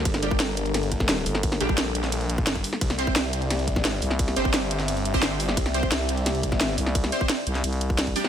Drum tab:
RD |x-x-x-x-x-x-x-x-|x-x-x-x-x-x-x-x-|x-x-x-x-x-x-x-x-|x-x-x-x-x-x-x-x-|
HH |xxx-x-xxxxx-x-o-|xxx-x-xxxxx-xxo-|xxx-x-xxxxx-x-o-|xxx-x-xxxxx-x-o-|
SD |-o--o---o--oo--o|-o--o--o----o--o|-o--o---o--oo--o|-o--o--o----o--o|
BD |o--o------oo----|o--o-------o-o--|o--o------oo----|o--o-------o----|

RD |x-x-x-x-x-x-x-x-|x-x-x-x-x-x-x-x-|
HH |xxx-x-xxxxx-x-o-|xxx-x-xxxxx-xxo-|
SD |-o--o---o--oo--o|-o--o--o----o--o|
BD |o--o------oo----|o--o-------o-o--|